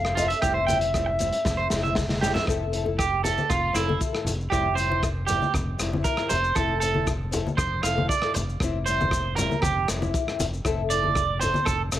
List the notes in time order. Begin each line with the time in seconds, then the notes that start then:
Already playing: F1 F5
0.05 cross-stick
0.15 C4 E4 F4 A4 E5, closed hi-hat, low conga, maracas
0.28 E5, closed hi-hat
0.33 maracas
0.42 F1 G3 C4 E4 G4, kick, cross-stick, closed hi-hat, maracas
0.54 C5
0.67 G3 G5, closed hi-hat, high conga, low conga, maracas
0.71 C4 E4
0.81 closed hi-hat
0.94 G3 C4 E4, kick, cross-stick, closed hi-hat, maracas
1.06 muted clean electric guitar stroke
1.19 G3 C4, closed hi-hat, high conga, maracas
1.23 E4
1.33 closed hi-hat
1.45 F1, kick, snare, high conga, maracas
1.57 C5
1.70 F1 C4 E4, muted steel-string acoustic guitar stroke, snare, low conga, maracas
1.83 C4 E4 E5, high conga, maracas
1.95 kick, snare, high conga, maracas
2.09 snare, high conga
2.21 G3 C4 G4, snare, low conga, maracas
2.25 E4
2.34 E5, snare, low conga, maracas
2.46 F1 C4 E4 A4, kick, cross-stick, maracas
2.72 C4 E4 A4, closed hi-hat
2.85 E4 A4, high conga
2.99 G4, kick, cross-stick, maracas
3.23 C4 E4 A4, closed hi-hat, low conga, maracas
3.38 high conga, maracas
3.50 F1 F4, kick, cross-stick, maracas
3.73 F1 C4 E4 A4, cross-stick, closed hi-hat, maracas
3.88 E4 A4, high conga
4.01 kick, maracas
4.13 E4 A4, cross-stick
4.24 F1, closed hi-hat, low conga, maracas
4.40 maracas
4.50 F1 G3 C4 E4 G4, kick, cross-stick, maracas
4.75 G3 C4 C5, closed hi-hat, maracas
4.80 E4
4.89 C4 E4, high conga
5.03 kick, cross-stick, maracas
5.26 G3 C4 E4 G4, closed hi-hat, low conga, maracas
5.42 high conga, maracas
5.54 F1, kick, cross-stick, maracas
5.78 F1 G3 C4 E4, cross-stick, closed hi-hat, maracas
5.93 C4 E4, high conga
6.04 A#4, kick, maracas
6.17 C4 E4, cross-stick
6.29 F1 C5, closed hi-hat, low conga, maracas
6.44 maracas
6.55 F1 E4 A4, muted steel-string acoustic guitar stroke, kick, cross-stick, maracas
6.80 C4 E4 A4, closed hi-hat, maracas
6.85 A4
6.94 E4 A4, high conga
7.07 kick, cross-stick, maracas
7.31 C4 E4 A4, closed hi-hat, low conga, maracas
7.47 high conga, maracas
7.57 F1 C5, kick, cross-stick, maracas
7.83 F1 C4 E4 A4 F5, cross-stick, closed hi-hat, maracas
7.96 E4 A4, high conga
8.09 D5, kick, maracas
8.22 E4 A4, cross-stick
8.34 F1, muted clean electric guitar stroke, closed hi-hat, low conga, maracas
8.49 maracas
8.60 F1 C4 E4, muted steel-string acoustic guitar stroke, kick, cross-stick, maracas
8.86 G3 C4 C5, closed hi-hat, maracas
8.90 E4
9.01 C4, high conga, low conga, maracas
9.11 kick, cross-stick, maracas
9.36 G3 C4 A#4, closed hi-hat, low conga, maracas
9.40 E4
9.51 high conga, maracas
9.62 F1 G4, kick, cross-stick, high conga, maracas
9.87 F1 G3 C4 E4, cross-stick, closed hi-hat, maracas
10.01 C4 E4, high conga, maracas
10.14 kick, maracas
10.27 C4 E4, cross-stick
10.39 F1, closed hi-hat, low conga, maracas
10.54 maracas
10.64 F1 C4 E4 A4, kick, cross-stick, maracas
10.90 C4 E4 A4 D5, closed hi-hat, maracas
11.03 E4 A4, high conga
11.15 kick, cross-stick, maracas
11.40 C4 A4 C5, muted steel-string acoustic guitar stroke, closed hi-hat, low conga, maracas
11.54 high conga, maracas
11.65 F1 A4, kick, cross-stick, maracas
11.92 F1 C4 E4, cross-stick, closed hi-hat, maracas
11.96 A4